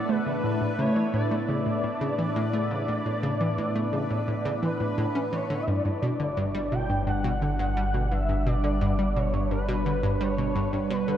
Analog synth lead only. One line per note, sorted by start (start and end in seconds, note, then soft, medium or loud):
0.00 0.11 D5 loud
0.09 0.80 B4 loud
0.79 1.13 C#5 loud
1.14 4.59 D5 loud
4.63 5.34 B4 loud
5.32 5.62 C#5 loud
5.60 5.69 E5 medium
5.67 6.74 D5 loud
6.72 7.06 G5 loud
7.07 8.13 F#5 loud
8.12 8.46 E5 loud
8.47 9.18 D5 loud
9.16 9.51 C#5 loud
9.52 10.23 B4 loud
10.21 10.91 C#5 loud
10.91 11.17 B4 medium